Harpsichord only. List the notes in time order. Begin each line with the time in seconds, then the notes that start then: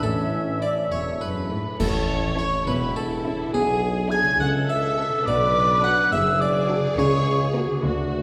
0.03 A4
0.62 D5
0.92 C#5
1.21 B4
1.80 A4
2.39 C#5
2.67 B4
2.96 A4
3.54 G#4
4.12 G#5
4.40 F#5
4.70 E5
5.28 D5
5.84 F#5
6.12 E5
6.42 D5
6.99 C#5